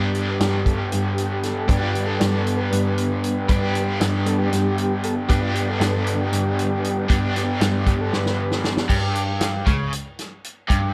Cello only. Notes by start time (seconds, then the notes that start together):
Already playing: G2
0.40 G2
0.93 G2
1.69 G2
2.20 G2
2.72 G2
3.49 G2
4.00 G2
4.52 G2
5.30 G2
5.80 G2
6.32 G2
7.10 G2
7.61 G2
8.12 G2
8.89 G2
9.67 C#2
10.70 G2